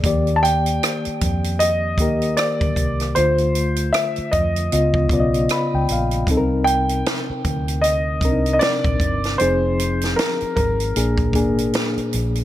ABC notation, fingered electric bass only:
X:1
M:4/4
L:1/16
Q:"Swing 16ths" 1/4=77
K:Eblyd
V:1 name="Fingered electric bass" clef=bass
E,,4 z2 F,,4 E,,2 z D,, C,,2 | D,,4 z2 F,,2 _D,,2 _C,,2 z D,, B,,,2 | C,,4 z2 D,,4 C,,2 z B,,, G,,,2 | F,,,4 z2 _A,,,2 B,,,2 A,,,2 z2 B,,,2 |]